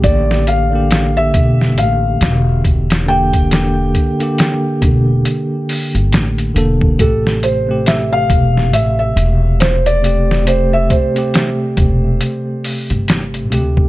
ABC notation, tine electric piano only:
X:1
M:4/4
L:1/16
Q:"Swing 16ths" 1/4=69
K:Aphr
V:1 name="Tine electric piano"
[D,B,G]3 [D,B,G] z8 z2 [D,B,G]2 | [D,B,G]3 [D,B,G] z8 z2 [D,B,A]2 | [C,A,G]3 [C,A,G] z8 z2 [C,A,G]2 | [C,A,G]3 [C,A,G] z8 z2 [C,A,G]2 |]